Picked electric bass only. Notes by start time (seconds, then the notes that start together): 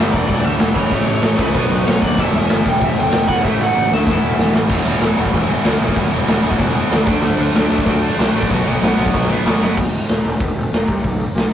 0.00 G1
0.14 E1
0.30 E1
0.45 D2
0.61 E1
0.75 E1
0.92 A1
1.07 A1
1.22 A1
1.38 C#2
1.55 B1
1.71 B1
1.88 B1
2.02 D#2
2.18 E1
2.34 E1
2.51 G1
2.66 E1
2.81 E1
2.98 D2
3.15 E1
3.28 E1
3.45 A1
3.60 A1
3.77 A1
3.91 D2
4.07 E1
4.23 E1
4.38 E1
4.54 A1
4.70 E1
4.86 E1
5.02 E1
5.18 E1
5.33 E1
5.65 D2
5.81 B1
5.96 E1
6.12 E1
6.28 E1
6.44 E1
6.59 E1
6.91 D2
7.07 D2
7.22 D2
7.38 D2
7.55 D2
7.70 D2
7.86 D2
8.19 C2
8.34 A1
8.51 B1
8.66 B1
8.82 B1
8.98 B1
9.14 B1
9.45 A1
9.61 F#1
9.78 E1
10.10 E1
10.24 E1
10.40 E1
10.55 E1
10.72 E1
10.89 C2
11.04 B1
11.35 B1